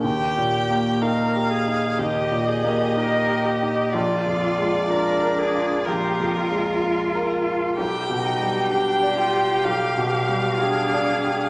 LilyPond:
<<
  \new Staff \with { instrumentName = "Violin" } { \time 4/4 \key ees \major \tempo 4 = 62 g''4 f''4 ees''2 | d''2 bes'4. r8 | g''4 g''4 f''2 | }
  \new Staff \with { instrumentName = "Viola" } { \time 4/4 \key ees \major g'4 bes'8 aes'8 g'8 g'4. | f'4 bes'8 aes'8 g'8 f'8 f'4 | g'2. aes'4 | }
  \new Staff \with { instrumentName = "Cello" } { \time 4/4 \key ees \major r2 g'8 aes'8 bes'8 g'8 | f'4 d'4 f'2 | g'8 ees'8 d'8 f'8 g'4 d'4 | }
  \new Staff \with { instrumentName = "Grand piano" } { \time 4/4 \key ees \major \tuplet 3/2 { ees,8 bes,8 bes8 ees'8 g'8 ees'8 ees,8 bes,8 bes8 ees'8 g'8 ees'8 } | \tuplet 3/2 { bes,,8 f,8 aes8 f'8 bes'8 f'8 bes,,8 f,8 aes8 f'8 bes'8 f'8 } | \tuplet 3/2 { b,,8 b,8 g8 g'8 d''8 g'8 b,,8 b,8 g8 g'8 d''8 g'8 } | }
>>